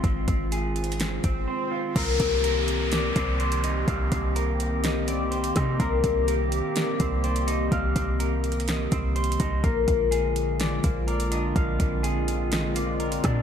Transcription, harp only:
X:1
M:4/4
L:1/8
Q:1/4=125
K:Cm
V:1 name="Harp"
z8 | B2 z2 d c d e | f2 z2 e d3 | B2 z2 d c d e |
f2 z2 e c3 | B2 z2 d c d e | f2 z2 e d3 |]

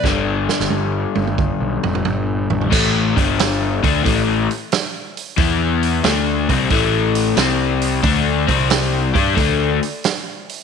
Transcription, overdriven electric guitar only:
X:1
M:4/4
L:1/8
Q:"Swing" 1/4=90
K:Am
V:1 name="Overdriven electric guitar" clef=bass
[G,,D,G,]8 | [A,,E,A,] [G,,D,G,]2 [D,A,D] [A,,E,A,] z3 | [E,B,E]2 [D,A,D] [C,G,C] [A,,E,A,]2 [C,G,C]2 | [D,A,D] [C,G,C]2 [G,DG] [D,A,D] z3 |]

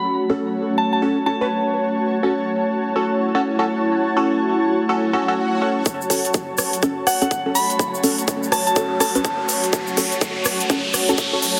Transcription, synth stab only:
X:1
M:4/4
L:1/16
Q:"Swing 16ths" 1/4=124
K:F#m
V:1 name="Synth stab"
z2 [CFA]6 [CFA] z [CFA] [CFB] z4 | z2 [CFA] z4 z [CFA] z2 [CFA] z [CFA] z2 | z2 [CFA]6 [CFA] z [CFA] [CFA] z2 [CFA]2- | [CFA]2 [CFA] z4 z [CFA] z2 [CFA] z [CFA] z2 |
z2 [CFA]6 [CFA] z [CFA] [CFB] z4 | z2 [CFA] z4 z [CFA] z2 [CFA] z [CFA] z2 |]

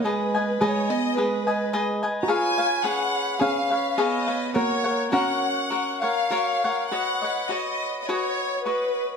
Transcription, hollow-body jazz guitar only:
X:1
M:4/4
L:1/16
Q:1/4=105
K:F#
V:1 name="Hollow-body jazz guitar"
G,4 G,2 B,2 G,6 z3/2 F/2 | E4 C4 C4 B,4 | A,4 C6 z6 | [K:B] z16 |]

